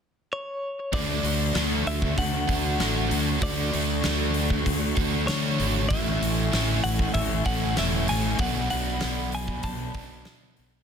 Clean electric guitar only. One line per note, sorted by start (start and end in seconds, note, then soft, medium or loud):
0.33 0.93 C#5 medium
0.94 1.87 D5 medium
1.87 2.18 E5 medium
2.18 3.43 F#5 medium
3.43 4.63 D5 medium
5.27 5.86 C#5 medium
5.89 6.79 E5 medium
6.84 7.13 F#5 medium
7.14 7.45 E5 medium
7.46 7.78 F#5 medium
7.79 8.09 E5 medium
8.09 8.40 G#5 medium
8.40 8.69 F#5 medium
8.70 9.34 F#5 loud
9.35 9.63 G#5 medium
9.64 10.53 A5 medium